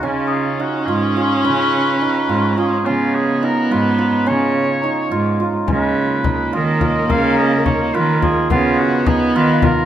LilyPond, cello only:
\new Staff \with { instrumentName = "Cello" } { \clef bass \time 5/8 \key des \mixolydian \tempo 4 = 106 des4. aes,4 | des4. aes,4 | des4. aes,4 | des4. aes,4 |
des4. ees4 | des4. ees4 | des4. ees4 | }